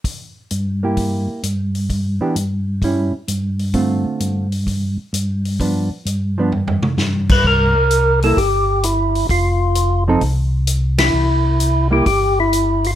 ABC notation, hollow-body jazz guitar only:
X:1
M:4/4
L:1/8
Q:"Swing" 1/4=130
K:Cmix
V:1 name="Hollow-body jazz guitar"
z3 [B,EG]3 z2 | z [E,=B,DG] z2 [G,^CE] z3 | [D,A,CF]3 z4 z | [F,=B,D] z2 [F,B,D] z4 |
z3 [G,B,E] z4 | z3 [F,C_EA] z4 | z3 [G,B,E] z4 |]